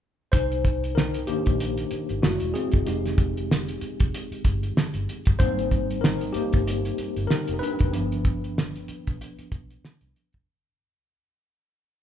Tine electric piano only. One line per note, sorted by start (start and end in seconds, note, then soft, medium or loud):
0.32 0.93 D#4 medium
0.32 0.98 C5 medium
0.95 1.11 D#4 medium
0.95 1.10 A#4 medium
1.27 2.19 D#3 soft
1.27 2.20 A#3 medium
1.27 2.20 D4 medium
1.27 2.25 G4 medium
2.22 2.83 G#3 soft
2.22 2.53 A3 medium
2.22 2.84 E4 soft
2.22 2.55 F#4 medium
2.54 3.78 C4 medium
2.54 3.77 G#4 medium
2.86 3.31 G#3 soft
2.86 3.31 D#4 medium
2.86 3.30 G4 soft
5.39 6.31 G3 medium
5.39 6.31 A#3 soft
5.39 6.31 C4 medium
5.39 6.00 D#4 medium
5.39 6.05 C5 loud
6.01 6.33 D#4 medium
6.01 6.35 A#4 medium
6.33 7.26 A#3 medium
6.33 7.32 G4 medium
7.27 7.42 D#4 medium
7.27 7.39 A#4 medium
7.54 7.61 A#4 soft
7.59 7.92 D4 medium
7.59 8.83 B4 medium
7.93 8.84 F3 soft
7.93 8.84 B3 soft
7.93 8.84 D4 medium